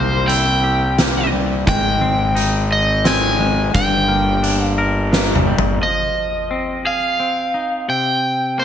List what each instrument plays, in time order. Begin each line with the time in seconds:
Already playing: fingered electric bass C2, clean electric guitar C3 A#3, overdriven electric guitar C5
0.28 clean electric guitar E4, overdriven electric guitar G5, closed hi-hat
0.64 clean electric guitar G4
0.98 clean electric guitar A#3, snare, closed hi-hat
1.32 clean electric guitar G3
1.67 fingered electric bass G#1, clean electric guitar G#3, overdriven electric guitar G5, kick, closed hi-hat
2.01 clean electric guitar C4
2.35 clean electric guitar D#4, closed hi-hat
2.72 overdriven electric guitar D#5
3.05 clean electric guitar C4, overdriven electric guitar G#5, snare, closed hi-hat
3.40 clean electric guitar G#3
3.74 fingered electric bass G1, clean electric guitar G2, overdriven electric guitar G5, kick, closed hi-hat
4.08 clean electric guitar A#3
4.43 clean electric guitar D4, closed hi-hat
4.65 overdriven electric guitar F5
4.78 clean electric guitar A#4
5.12 clean electric guitar A#3, snare
5.35 mid tom
5.47 clean electric guitar G3
5.58 floor tom
5.82 clean electric guitar F3, overdriven electric guitar D#5
6.51 clean electric guitar C4
6.85 clean electric guitar G#4, overdriven electric guitar F5
7.20 clean electric guitar C4
7.54 clean electric guitar D#4
7.88 clean electric guitar C3, overdriven electric guitar G5
8.58 clean electric guitar A#3, overdriven electric guitar C5